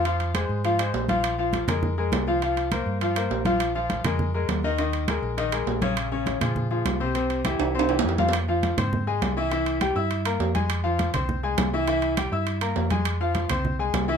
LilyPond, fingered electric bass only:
\new Staff \with { instrumentName = "Fingered electric bass" } { \clef bass \time 4/4 \key f \minor \tempo 4 = 203 f,4. aes,4. bes,,4~ | bes,,4. f,4. c,4~ | c,4. g,4. bes,,4~ | bes,,4. f,4. ees,4~ |
ees,4. bes,,4. bes,,4~ | bes,,4. bes,4. c,4~ | c,4. c,4. f,4~ | f,4. aes,4. c,4~ |
c,4. g,4. f,4~ | f,4. c,4. c,4~ | c,4. g,4. f,4~ | f,4. c,4. c,4 | }